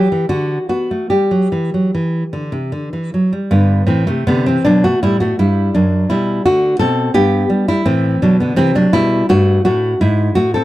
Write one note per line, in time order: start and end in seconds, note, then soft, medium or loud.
0.00 0.27 G4 medium
0.12 0.29 E3 medium
0.29 0.57 D3 medium
0.29 0.67 F#4 medium
0.69 0.88 B3 medium
0.69 1.08 F#4 medium
0.91 1.10 A3 medium
1.10 1.30 G3 medium
1.10 2.69 G4 medium
1.31 1.51 F#3 medium
1.52 1.71 E3 medium
1.74 1.92 F#3 soft
1.95 2.23 E3 medium
2.33 2.52 D3 medium
2.52 2.71 C3 medium
2.72 2.91 D3 medium
2.93 3.12 E3 medium
3.14 3.32 F#3 medium
3.33 3.51 G3 medium
3.51 3.81 G2 medium
3.51 3.87 D3 medium
3.51 3.87 B3 medium
3.87 4.08 A2 medium
3.87 4.06 E3 medium
3.87 4.07 C4 medium
4.07 4.25 C3 medium
4.07 4.26 A3 medium
4.27 4.57 C3 medium
4.27 4.45 D3 medium
4.27 4.45 B3 loud
4.46 4.64 E3 medium
4.46 4.64 C4 medium
4.65 4.94 B2 medium
4.65 4.82 F#3 medium
4.65 4.83 D4 loud
4.84 5.01 A3 medium
4.84 5.02 F#4 loud
5.03 5.31 A2 medium
5.03 5.19 G3 medium
5.03 5.20 E4 loud
5.20 5.37 A3 medium
5.20 5.38 F#4 medium
5.39 5.68 G2 medium
5.39 5.72 G3 medium
5.39 5.73 E4 medium
5.75 6.03 F#2 medium
5.75 6.08 F#3 medium
5.75 6.09 D4 medium
6.10 6.39 B2 medium
6.10 6.44 G3 medium
6.10 6.44 E4 medium
6.45 6.74 D3 medium
6.45 6.79 A3 medium
6.45 6.79 F#4 loud
6.79 7.09 B2 medium
6.79 7.13 C4 medium
6.79 7.14 A4 loud
7.14 7.43 G2 medium
7.14 7.65 B3 medium
7.14 7.66 G4 loud
7.50 7.68 G3 medium
7.68 7.85 G3 medium
7.68 7.87 E4 loud
7.85 8.15 A2 medium
7.85 8.20 E3 medium
7.85 8.21 C4 medium
8.22 8.51 B2 medium
8.22 8.40 F#3 medium
8.22 8.40 D4 medium
8.40 8.58 D3 medium
8.40 8.58 B3 medium
8.56 8.86 C3 medium
8.56 8.75 E3 medium
8.56 8.75 C4 loud
8.75 8.92 F#3 medium
8.75 8.93 D4 loud
8.93 9.22 B2 medium
8.93 9.27 G3 medium
8.93 9.27 E4 loud
9.29 9.57 G2 medium
9.29 9.62 A3 medium
9.29 9.63 F#4 loud
9.65 9.93 A2 medium
9.65 9.98 A3 medium
9.65 9.99 F#4 loud
10.01 10.29 G#2 medium
10.01 10.34 G#3 medium
10.01 10.34 E4 loud
10.35 10.64 A2 medium
10.35 10.52 A3 medium
10.35 10.53 F#4 loud
10.54 10.64 C4 medium
10.54 10.64 A4 medium